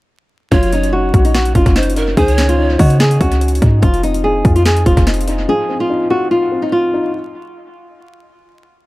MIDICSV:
0, 0, Header, 1, 6, 480
1, 0, Start_track
1, 0, Tempo, 413793
1, 600, Time_signature, 4, 2, 24, 8
1, 10282, End_track
2, 0, Start_track
2, 0, Title_t, "Pan flute"
2, 0, Program_c, 0, 75
2, 601, Note_on_c, 0, 73, 102
2, 1052, Note_off_c, 0, 73, 0
2, 2041, Note_on_c, 0, 72, 83
2, 2269, Note_off_c, 0, 72, 0
2, 2280, Note_on_c, 0, 70, 82
2, 2508, Note_off_c, 0, 70, 0
2, 2519, Note_on_c, 0, 72, 110
2, 2705, Note_off_c, 0, 72, 0
2, 2705, Note_on_c, 0, 73, 110
2, 3433, Note_off_c, 0, 73, 0
2, 10282, End_track
3, 0, Start_track
3, 0, Title_t, "Nylon-string guitar"
3, 0, Program_c, 1, 24
3, 597, Note_on_c, 1, 65, 97
3, 810, Note_off_c, 1, 65, 0
3, 843, Note_on_c, 1, 63, 75
3, 1053, Note_off_c, 1, 63, 0
3, 1073, Note_on_c, 1, 66, 81
3, 1421, Note_off_c, 1, 66, 0
3, 1447, Note_on_c, 1, 63, 82
3, 1547, Note_off_c, 1, 63, 0
3, 1559, Note_on_c, 1, 66, 86
3, 1771, Note_off_c, 1, 66, 0
3, 1804, Note_on_c, 1, 65, 78
3, 2014, Note_off_c, 1, 65, 0
3, 2037, Note_on_c, 1, 63, 73
3, 2250, Note_off_c, 1, 63, 0
3, 2520, Note_on_c, 1, 68, 100
3, 2865, Note_off_c, 1, 68, 0
3, 2884, Note_on_c, 1, 65, 73
3, 3217, Note_off_c, 1, 65, 0
3, 3240, Note_on_c, 1, 66, 80
3, 3451, Note_off_c, 1, 66, 0
3, 3483, Note_on_c, 1, 68, 102
3, 3693, Note_off_c, 1, 68, 0
3, 3719, Note_on_c, 1, 66, 82
3, 4396, Note_off_c, 1, 66, 0
3, 4435, Note_on_c, 1, 65, 106
3, 4648, Note_off_c, 1, 65, 0
3, 4677, Note_on_c, 1, 63, 85
3, 4890, Note_off_c, 1, 63, 0
3, 4917, Note_on_c, 1, 68, 84
3, 5263, Note_off_c, 1, 68, 0
3, 5284, Note_on_c, 1, 65, 80
3, 5384, Note_off_c, 1, 65, 0
3, 5404, Note_on_c, 1, 68, 80
3, 5613, Note_off_c, 1, 68, 0
3, 5638, Note_on_c, 1, 65, 80
3, 5850, Note_off_c, 1, 65, 0
3, 5880, Note_on_c, 1, 63, 75
3, 6092, Note_off_c, 1, 63, 0
3, 6367, Note_on_c, 1, 68, 109
3, 6709, Note_off_c, 1, 68, 0
3, 6730, Note_on_c, 1, 65, 85
3, 7060, Note_off_c, 1, 65, 0
3, 7079, Note_on_c, 1, 66, 84
3, 7291, Note_off_c, 1, 66, 0
3, 7318, Note_on_c, 1, 65, 81
3, 7664, Note_off_c, 1, 65, 0
3, 7681, Note_on_c, 1, 63, 83
3, 7783, Note_off_c, 1, 63, 0
3, 7798, Note_on_c, 1, 65, 87
3, 8250, Note_off_c, 1, 65, 0
3, 10282, End_track
4, 0, Start_track
4, 0, Title_t, "Felt piano"
4, 0, Program_c, 2, 0
4, 601, Note_on_c, 2, 54, 93
4, 804, Control_c, 2, 64, 127
4, 832, Note_on_c, 2, 61, 84
4, 1078, Note_on_c, 2, 63, 81
4, 1325, Note_on_c, 2, 66, 103
4, 1789, Note_off_c, 2, 61, 0
4, 1800, Note_off_c, 2, 54, 0
4, 1806, Note_on_c, 2, 61, 80
4, 2258, Note_off_c, 2, 63, 0
4, 2275, Note_on_c, 2, 63, 81
4, 2517, Note_off_c, 2, 63, 0
4, 2520, Note_on_c, 2, 51, 94
4, 2522, Note_off_c, 2, 66, 0
4, 2523, Note_off_c, 2, 61, 0
4, 2536, Control_c, 2, 64, 0
4, 2733, Control_c, 2, 64, 127
4, 2758, Note_on_c, 2, 61, 83
4, 2994, Note_on_c, 2, 63, 75
4, 3239, Note_on_c, 2, 75, 103
4, 3708, Note_off_c, 2, 61, 0
4, 3720, Note_off_c, 2, 51, 0
4, 3725, Note_on_c, 2, 61, 78
4, 4178, Note_off_c, 2, 63, 0
4, 4195, Note_on_c, 2, 63, 83
4, 4433, Note_on_c, 2, 53, 88
4, 4438, Note_off_c, 2, 63, 0
4, 4439, Note_off_c, 2, 75, 0
4, 4442, Note_off_c, 2, 61, 0
4, 4456, Control_c, 2, 64, 0
4, 4631, Control_c, 2, 64, 127
4, 4681, Note_on_c, 2, 60, 84
4, 4925, Note_on_c, 2, 63, 80
4, 5155, Note_on_c, 2, 65, 105
4, 5622, Note_off_c, 2, 60, 0
4, 5637, Note_off_c, 2, 53, 0
4, 5640, Note_on_c, 2, 60, 78
4, 6102, Note_off_c, 2, 63, 0
4, 6120, Note_on_c, 2, 63, 84
4, 6357, Note_off_c, 2, 65, 0
4, 6360, Note_on_c, 2, 53, 85
4, 6583, Note_off_c, 2, 60, 0
4, 6601, Note_on_c, 2, 60, 79
4, 6820, Note_off_c, 2, 63, 0
4, 6837, Note_on_c, 2, 63, 81
4, 7080, Note_on_c, 2, 65, 104
4, 7539, Note_off_c, 2, 60, 0
4, 7556, Note_on_c, 2, 60, 79
4, 7560, Note_off_c, 2, 53, 0
4, 8027, Note_off_c, 2, 63, 0
4, 8045, Note_on_c, 2, 63, 84
4, 8278, Note_off_c, 2, 60, 0
4, 8280, Note_off_c, 2, 65, 0
4, 8282, Note_off_c, 2, 63, 0
4, 8295, Control_c, 2, 64, 0
4, 10282, End_track
5, 0, Start_track
5, 0, Title_t, "808-style bass"
5, 0, Program_c, 3, 38
5, 600, Note_on_c, 3, 30, 108
5, 1291, Note_off_c, 3, 30, 0
5, 1320, Note_on_c, 3, 34, 102
5, 1781, Note_off_c, 3, 34, 0
5, 1800, Note_on_c, 3, 30, 99
5, 1919, Note_off_c, 3, 30, 0
5, 1926, Note_on_c, 3, 30, 104
5, 2496, Note_off_c, 3, 30, 0
5, 2520, Note_on_c, 3, 37, 110
5, 3211, Note_off_c, 3, 37, 0
5, 3240, Note_on_c, 3, 49, 106
5, 3701, Note_off_c, 3, 49, 0
5, 3719, Note_on_c, 3, 37, 100
5, 4180, Note_off_c, 3, 37, 0
5, 4200, Note_on_c, 3, 44, 107
5, 4430, Note_off_c, 3, 44, 0
5, 4440, Note_on_c, 3, 29, 109
5, 5131, Note_off_c, 3, 29, 0
5, 5159, Note_on_c, 3, 41, 105
5, 5620, Note_off_c, 3, 41, 0
5, 5639, Note_on_c, 3, 29, 103
5, 5761, Note_off_c, 3, 29, 0
5, 5766, Note_on_c, 3, 29, 104
5, 6336, Note_off_c, 3, 29, 0
5, 10282, End_track
6, 0, Start_track
6, 0, Title_t, "Drums"
6, 600, Note_on_c, 9, 36, 123
6, 600, Note_on_c, 9, 42, 80
6, 716, Note_off_c, 9, 36, 0
6, 716, Note_off_c, 9, 42, 0
6, 727, Note_on_c, 9, 42, 59
6, 840, Note_off_c, 9, 42, 0
6, 840, Note_on_c, 9, 42, 83
6, 956, Note_off_c, 9, 42, 0
6, 968, Note_on_c, 9, 42, 56
6, 1084, Note_off_c, 9, 42, 0
6, 1320, Note_on_c, 9, 36, 100
6, 1320, Note_on_c, 9, 42, 77
6, 1436, Note_off_c, 9, 36, 0
6, 1436, Note_off_c, 9, 42, 0
6, 1447, Note_on_c, 9, 42, 68
6, 1560, Note_off_c, 9, 42, 0
6, 1560, Note_on_c, 9, 42, 89
6, 1561, Note_on_c, 9, 38, 112
6, 1676, Note_off_c, 9, 42, 0
6, 1677, Note_off_c, 9, 38, 0
6, 1687, Note_on_c, 9, 42, 65
6, 1799, Note_off_c, 9, 42, 0
6, 1799, Note_on_c, 9, 42, 86
6, 1800, Note_on_c, 9, 36, 97
6, 1915, Note_off_c, 9, 42, 0
6, 1916, Note_off_c, 9, 36, 0
6, 1927, Note_on_c, 9, 36, 97
6, 1927, Note_on_c, 9, 42, 60
6, 2040, Note_off_c, 9, 42, 0
6, 2040, Note_on_c, 9, 38, 98
6, 2040, Note_on_c, 9, 42, 74
6, 2043, Note_off_c, 9, 36, 0
6, 2119, Note_off_c, 9, 42, 0
6, 2119, Note_on_c, 9, 42, 72
6, 2156, Note_off_c, 9, 38, 0
6, 2200, Note_off_c, 9, 42, 0
6, 2200, Note_on_c, 9, 42, 69
6, 2279, Note_off_c, 9, 42, 0
6, 2279, Note_on_c, 9, 42, 70
6, 2395, Note_off_c, 9, 42, 0
6, 2520, Note_on_c, 9, 36, 115
6, 2520, Note_on_c, 9, 42, 80
6, 2636, Note_off_c, 9, 36, 0
6, 2636, Note_off_c, 9, 42, 0
6, 2647, Note_on_c, 9, 42, 59
6, 2760, Note_off_c, 9, 42, 0
6, 2760, Note_on_c, 9, 38, 105
6, 2760, Note_on_c, 9, 42, 83
6, 2876, Note_off_c, 9, 38, 0
6, 2876, Note_off_c, 9, 42, 0
6, 2887, Note_on_c, 9, 42, 57
6, 3003, Note_off_c, 9, 42, 0
6, 3239, Note_on_c, 9, 46, 78
6, 3240, Note_on_c, 9, 36, 103
6, 3355, Note_off_c, 9, 46, 0
6, 3356, Note_off_c, 9, 36, 0
6, 3366, Note_on_c, 9, 42, 65
6, 3479, Note_off_c, 9, 42, 0
6, 3479, Note_on_c, 9, 42, 86
6, 3480, Note_on_c, 9, 38, 116
6, 3595, Note_off_c, 9, 42, 0
6, 3596, Note_off_c, 9, 38, 0
6, 3607, Note_on_c, 9, 42, 63
6, 3719, Note_on_c, 9, 36, 98
6, 3720, Note_off_c, 9, 42, 0
6, 3720, Note_on_c, 9, 42, 89
6, 3835, Note_off_c, 9, 36, 0
6, 3836, Note_off_c, 9, 42, 0
6, 3847, Note_on_c, 9, 42, 58
6, 3960, Note_off_c, 9, 42, 0
6, 3960, Note_on_c, 9, 42, 73
6, 4040, Note_off_c, 9, 42, 0
6, 4040, Note_on_c, 9, 42, 75
6, 4121, Note_off_c, 9, 42, 0
6, 4121, Note_on_c, 9, 42, 70
6, 4200, Note_off_c, 9, 42, 0
6, 4200, Note_on_c, 9, 36, 93
6, 4200, Note_on_c, 9, 42, 71
6, 4316, Note_off_c, 9, 36, 0
6, 4316, Note_off_c, 9, 42, 0
6, 4440, Note_on_c, 9, 36, 121
6, 4440, Note_on_c, 9, 42, 78
6, 4556, Note_off_c, 9, 36, 0
6, 4556, Note_off_c, 9, 42, 0
6, 4567, Note_on_c, 9, 42, 58
6, 4680, Note_off_c, 9, 42, 0
6, 4680, Note_on_c, 9, 42, 82
6, 4796, Note_off_c, 9, 42, 0
6, 4807, Note_on_c, 9, 42, 58
6, 4923, Note_off_c, 9, 42, 0
6, 5159, Note_on_c, 9, 36, 101
6, 5159, Note_on_c, 9, 42, 75
6, 5275, Note_off_c, 9, 36, 0
6, 5275, Note_off_c, 9, 42, 0
6, 5287, Note_on_c, 9, 42, 66
6, 5399, Note_off_c, 9, 42, 0
6, 5399, Note_on_c, 9, 42, 86
6, 5400, Note_on_c, 9, 38, 113
6, 5515, Note_off_c, 9, 42, 0
6, 5516, Note_off_c, 9, 38, 0
6, 5527, Note_on_c, 9, 42, 62
6, 5639, Note_off_c, 9, 42, 0
6, 5639, Note_on_c, 9, 36, 94
6, 5639, Note_on_c, 9, 42, 88
6, 5755, Note_off_c, 9, 36, 0
6, 5755, Note_off_c, 9, 42, 0
6, 5766, Note_on_c, 9, 36, 95
6, 5767, Note_on_c, 9, 42, 62
6, 5879, Note_off_c, 9, 42, 0
6, 5879, Note_on_c, 9, 38, 101
6, 5879, Note_on_c, 9, 42, 69
6, 5882, Note_off_c, 9, 36, 0
6, 5960, Note_off_c, 9, 42, 0
6, 5960, Note_on_c, 9, 42, 73
6, 5995, Note_off_c, 9, 38, 0
6, 6040, Note_off_c, 9, 42, 0
6, 6040, Note_on_c, 9, 42, 72
6, 6120, Note_off_c, 9, 42, 0
6, 6120, Note_on_c, 9, 42, 70
6, 6236, Note_off_c, 9, 42, 0
6, 10282, End_track
0, 0, End_of_file